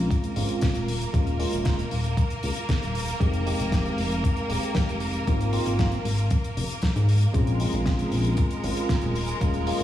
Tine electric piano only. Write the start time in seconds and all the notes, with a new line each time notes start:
Already playing: G#3 C4 C#4 F4
0.36 G#3 C4 C#4 F4
1.13 G#3 A#3 C#4 F4
1.39 G#3 A#3 C#4 F4
1.64 G#3 A#3 C#4 F4
3.20 G#3 C4 D#4 G4
3.46 G#3 C4 D#4 G4
3.71 G#3 C4 D#4 G4
4.48 G#3 C4 D#4 G4
5.27 A#3 C4 D#4 F4
5.52 A#3 C4 D#4 F4
5.79 A#3 C4 D#4 F4
7.33 G#3 C4 C#4 F4
7.60 G#3 C4 C#4 F4
7.85 G#3 C4 C#4 F4
8.63 G#3 C4 C#4 F4
9.41 G#3 A#3 C#4 F4
9.67 G#3 A#3 C#4 F4